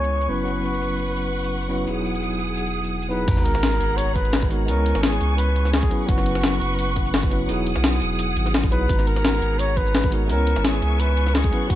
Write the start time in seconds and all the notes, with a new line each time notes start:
Already playing: C#2 G#3 B3 C#4 E4 C#5 G#5 C#6
0.04 shaker
0.21 shaker
0.28 F#1 F#3 B3 C#4 E4 B4 F#5
0.44 F#3 B3 C#4, shaker
0.48 E4 B4
0.64 shaker
0.73 shaker
0.82 shaker
0.99 shaker
1.17 shaker
1.44 shaker
1.61 shaker
1.68 F#3 B3 C#4 E4 B4
1.84 E1 F#3 B3 D#4 G#4 D#6, shaker
1.89 E4 G#4
2.05 shaker
2.14 shaker
2.23 shaker
2.40 shaker
2.57 shaker
2.67 shaker
2.84 shaker
3.02 shaker
3.09 F#3 B3 D#4 E4 G#4 B4, shaker
3.25 G#1 G#3 B3 D#4 G#4 F#5 A#5, kick, closed hi-hat, crash, sub drop, shaker
3.30 F#4 A#5
3.37 snare
3.45 A#4, closed hi-hat, shaker
3.55 snare, shaker
3.63 snare, closed hi-hat, shaker
3.72 closed hi-hat
3.80 G#1, closed hi-hat, shaker
3.97 C#5, closed hi-hat, shaker
4.15 B4, kick, closed hi-hat
4.25 shaker
4.33 snare, closed hi-hat
4.42 kick, shaker
4.49 G#3 B3 D#4 F#4 A#4, closed hi-hat
4.65 C#2 G#3 B3 C#4 A#4 G#5 C#6, closed hi-hat, shaker
4.69 E4 C#5
4.86 closed hi-hat, shaker
4.95 G#1, snare, shaker
5.02 G#4, snare, closed hi-hat, shaker
5.13 closed hi-hat
5.21 C#2, closed hi-hat, shaker
5.37 B4, closed hi-hat, shaker
5.56 closed hi-hat
5.65 snare, shaker
5.72 G#4, snare, closed hi-hat
5.83 kick, shaker
5.89 F#3 B3 C#4 E4 B4 F#5 C#6, closed hi-hat
6.06 F#1 F#3 B3 C#4 F#4, kick, closed hi-hat, shaker
6.10 E4 B4
6.18 snare
6.26 closed hi-hat, shaker
6.35 snare, shaker
6.44 snare, closed hi-hat, shaker
6.53 closed hi-hat
6.61 F#1, closed hi-hat, shaker
6.79 closed hi-hat, shaker
6.96 kick, closed hi-hat
7.06 shaker
7.14 snare, closed hi-hat
7.23 kick, shaker
7.30 F#3 B3 C#4 E4 B4, closed hi-hat
7.46 E1 F#3 B3 D#4 G#4 D#6, closed hi-hat, shaker
7.51 E4 G#4
7.67 closed hi-hat, shaker
7.76 B1, snare, shaker
7.84 snare, closed hi-hat, shaker
7.93 closed hi-hat
8.01 E1, closed hi-hat, shaker
8.19 closed hi-hat, shaker
8.37 G#1, closed hi-hat
8.46 snare, shaker
8.54 snare, closed hi-hat
8.64 kick, shaker
8.71 B1 F#3 B3 D#4 E4 G#4 B4, closed hi-hat
8.87 G#1 G#3 B3 D#4 G#4 A#5, kick, closed hi-hat, shaker
8.91 F#4 A#5
8.99 snare
9.07 A#4, closed hi-hat, shaker
9.16 snare, shaker
9.25 snare, closed hi-hat, shaker
9.34 closed hi-hat
9.42 G#1, closed hi-hat, shaker
9.59 C#5, closed hi-hat, shaker
9.77 B4, kick, closed hi-hat
9.86 shaker
9.95 snare, closed hi-hat
10.04 kick, shaker
10.11 G#3 B3 D#4 F#4 A#4, closed hi-hat
10.27 C#2 G#3 B3 C#4 A#4 E5 G#5 C#6, closed hi-hat, shaker
10.31 E4 C#5
10.47 closed hi-hat, shaker
10.56 G#1, snare, shaker
10.64 G#4, snare, closed hi-hat, shaker
10.74 closed hi-hat
10.82 C#2, closed hi-hat, shaker
11.00 B4, closed hi-hat, shaker
11.17 closed hi-hat
11.27 snare, shaker
11.35 G#4, snare, closed hi-hat
11.44 kick, shaker
11.51 F#3 B3 C#4 E4 B4 F#5, closed hi-hat
11.67 F#1 F#3 B3 C#4 F#4, kick, closed hi-hat, shaker
11.71 E4